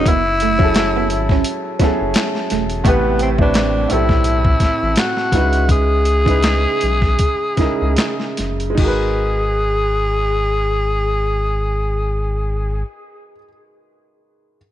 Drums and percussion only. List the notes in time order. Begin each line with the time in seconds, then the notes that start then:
0.06 kick, closed hi-hat
0.40 closed hi-hat
0.59 kick
0.74 snare, clap, closed hi-hat
1.10 closed hi-hat
1.29 kick, snare
1.44 closed hi-hat
1.80 kick, snare, closed hi-hat
2.14 snare, clap, closed hi-hat
2.35 snare
2.50 snare, closed hi-hat
2.70 closed hi-hat
2.85 kick, closed hi-hat
3.19 closed hi-hat
3.38 kick
3.54 snare, clap, closed hi-hat
3.90 closed hi-hat
4.09 kick, snare
4.24 closed hi-hat
4.45 kick
4.60 kick, snare, closed hi-hat
4.96 snare, clap, closed hi-hat
5.17 snare
5.32 kick, snare, closed hi-hat
5.53 closed hi-hat
5.69 kick, closed hi-hat
6.05 closed hi-hat
6.26 kick, closed hi-hat
6.42 snare, clap, closed hi-hat
6.81 closed hi-hat
7.02 kick, snare
7.19 kick, closed hi-hat
7.57 kick, snare, closed hi-hat
7.97 snare, clap, closed hi-hat
8.20 snare
8.37 snare, closed hi-hat
8.60 closed hi-hat
8.78 kick, crash